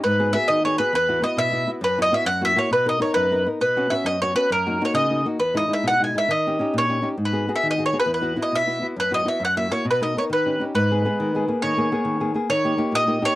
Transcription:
X:1
M:6/8
L:1/8
Q:3/8=135
K:B
V:1 name="Mandolin"
B2 e d c B | B2 d e2 z | B d e f e c | B d c B2 z |
B2 e d c B | A2 c d2 z | B d e f g e | d3 c2 z |
B2 e d c B | B2 d e2 z | B d e f e c | B d c B2 z |
[K:G#m] B6 | c4- c z | c3 d2 c |]
V:2 name="Nylon-string guitar"
G,, [B,FG] [B,FG] D, [B,FG] [B,FG] | E,, [B,EF] [B,EF] B,, [B,EF] [B,EF] | F,, [B,EF] [B,EF] F,, [A,EF] [A,EF] | B,, [B,DA] [B,DA] F,, [B,DA] [B,DA] |
B,, [B,CF] [B,CF] F,, [B,CF] [B,CF] | F,, [A,DF] [A,DF] C, [A,DF] [A,DF] | E,, [G,DE] [G,DE] B,, [G,DE] [G,DE] | D, [CD=G] [CDG] A,, [CDG] [CDG] |
G,, [B,FG] [B,FG] D, [B,FG] [B,FG] | E,, [B,EF] [B,EF] B,, [B,EF] [B,EF] | F,, [B,EF] [B,EF] F,, [A,EF] [A,EF] | B,, [B,DA] [B,DA] D, [CD=G] [CDG] |
[K:G#m] G,, [G,B,G] [G,B,G] D, [G,B,G] [A,B,G] | D, [A,B,G] [A,B,G] D, [A,B,G] [A,B,G] | D, [A,D=G] [A,DG] A,, [A,DG] [A,DG] |]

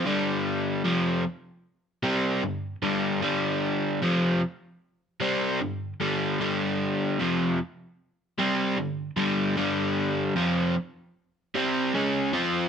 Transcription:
X:1
M:4/4
L:1/8
Q:1/4=76
K:Cdor
V:1 name="Overdriven electric guitar" clef=bass
[G,,D,G,]2 [F,,C,F,] z2 [C,G,C] [G,,D,] [G,,D,G,] | [G,,D,G,]2 [F,,C,F,] z2 [C,G,C] [G,,D,] [G,,D,G,] | [G,,D,G,]2 [F,,C,F,] z2 [C,G,C] [G,,D,] [G,,D,G,] | [G,,D,G,]2 [F,,C,F,] z2 [C,G,C] [^C,_A,^C] [F,=CF] |]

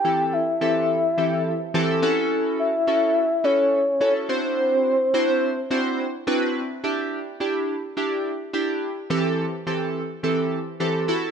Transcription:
X:1
M:4/4
L:1/8
Q:1/4=106
K:Ador
V:1 name="Soft synth lead"
g e e4- e z | z e3 ^c2 c =c- | c6 z2 | z8 |
z8 |]
V:2 name="Synth keys"
[E,CEGA] z [E,CEGA] z [E,CEGA] z [E,CEGA] [^CEFA]- | [^CEFA] z [CEFA] z [CEFA] z [CEFA] [=CDEFc]- | [CDEFc] z [CDEFc] z [CDEFc] z [CDEFB] z | [DEG] z [DEG] z [DEG] z [DEG] z |
[E,CGA] z [E,CGA] z [E,CGA] z [E,CGA] [EFA] |]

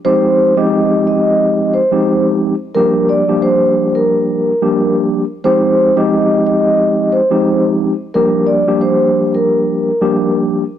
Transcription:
X:1
M:4/4
L:1/16
Q:"Swing 16ths" 1/4=89
K:Fdor
V:1 name="Vibraphone"
c3 e3 e4 c3 z3 | B2 d2 c3 B6 z3 | c3 e3 e4 c3 z3 | B2 d2 c3 B6 z3 |]
V:2 name="Tine electric piano"
[F,A,CEG]3 [F,A,CEG]6- [F,A,CEG] z [F,A,CEG]4 z | [F,G,B,DG]3 [F,G,B,DG]6- [F,G,B,DG] z [F,G,B,DG]4 z | [F,A,CEG]3 [F,A,CEG]6- [F,A,CEG] z [F,A,CEG]4 z | [F,G,B,DG]3 [F,G,B,DG]6- [F,G,B,DG] z [F,G,B,DG]4 z |]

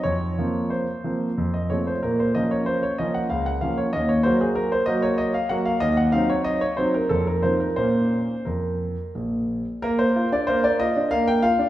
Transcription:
X:1
M:3/4
L:1/16
Q:1/4=93
K:Bbm
V:1 name="Grand piano"
d4 c4- c e d c | B c e d c d e g f g f d | e d c A B c e d e f g f | e g f d e d c B =A B c B |
c4 B4 z4 | [K:Bb] B c2 d c d e2 f g f2 |]
V:2 name="Grand piano"
F,,2 [F,B,C]4 [F,B,C]2 F,,2 [F,=A,C]2 | B,,2 [F,B,D]4 [F,B,D]2 D,,2 [F,B,D]2 | E,,2 [G,B,G]4 [G,B,G]4 [G,B,G]2 | E,,2 [G,CE]4 [G,CE]2 F,,2 [F,CE]2 |
[B,,B,D]4 F,,4 B,,,4 | [K:Bb] B, B, F D B, B, F D B, B, F D |]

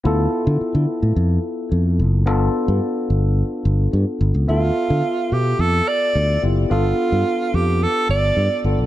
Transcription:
X:1
M:4/4
L:1/16
Q:1/4=108
K:Ddor
V:1 name="Alto saxophone"
z16 | z16 | F6 G2 A2 d4 z2 | F6 G2 A2 d4 z2 |]
V:2 name="Tine electric piano"
[B,EFA]16 | [B,DFA]16 | [B,FAe]12- [B,FAe]2 [B,EFG]2 | [B,DFA]12- [B,DFA]2 [B,DFA]2 |]
V:3 name="Fingered electric bass" clef=bass
D,,2 z D, z D, z A,, F,,2 z2 F,,2 ^F,,,2 | G,,,2 z G,, z2 G,,,3 z G,,,2 G,, z G,,, ^C,, | D,,2 z D, z2 B,,2 F,,2 z2 D,,2 ^F,,,2 | G,,,2 z G,, z2 F,,3 z G,,,2 G,, z G,,, B,,, |]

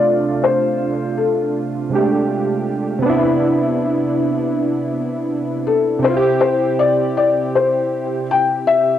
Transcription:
X:1
M:4/4
L:1/8
Q:"Swing 16ths" 1/4=80
K:C
V:1 name="Felt piano"
d c2 A4 z | z6 z A | c c d d c2 g e |]
V:2 name="Synth keys"
[C,A,DF]4- [C,A,DF] [C,_A,=A,DG]3 | [C,B,DE]8 | [C,CEFG]8 |]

